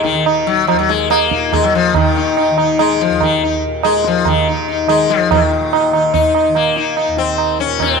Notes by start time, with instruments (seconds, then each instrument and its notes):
Already playing: tanpura D#2 A#2 D#3
0.03 sitar D#3, tabla ke
0.12 tanpura D#3, tabla te
0.25 sitar D#4, tabla na
0.47 sitar F#3, tabla te
0.67 sitar F3, tabla na
0.72 tanpura D#2
0.79 sitar F#3
0.89 sitar G#3, tabla te
1.10 sitar A#3, tabla na
1.31 tanpura A#2, sitar D#4, tabla ke
1.53 sitar G#3, tabla na, tabla ge
1.64 sitar F#3
1.74 sitar F3, tabla te
1.91 tanpura D#3, tabla na, tabla ge
1.96 sitar D#3
2.16 sitar D#4, tabla te
2.37 sitar D#4, tabla na
2.50 tanpura D#3
2.58 sitar D#4, tabla na
2.79 sitar G#3, tabla na
3.00 sitar F3, tabla te
3.09 tanpura D#2
3.21 sitar D#3, tabla na, tabla ge
3.44 sitar D#4
3.67 tanpura A#2
3.83 sitar G#3, tabla na
4.04 sitar F3, tabla te
4.25 tanpura D#3, sitar D#3, tabla na, tabla ge
4.47 sitar D#4
4.68 sitar D#4
4.86 tanpura D#3, sitar G#3, tabla na
5.10 sitar F3, tabla te
5.31 tanpura A#2, sitar D#3 D#4, tabla na, tabla ge
5.52 tabla te
5.73 sitar D#4, tabla na
5.90 tanpura D#3, sitar D#4, tabla na
6.14 sitar D#4, tabla tin, tabla ge
6.35 sitar D#4, tabla na
6.48 tanpura D#3
6.55 sitar A#3, tabla na
6.76 sitar D#4, tabla te
6.97 sitar D#4, tabla na
7.07 tanpura D#2
7.17 sitar C4, tabla te
7.38 tabla na
7.59 sitar C#4, tabla te
7.66 tanpura A#2
7.80 sitar C#4, tabla na, tabla ge
7.93 sitar C4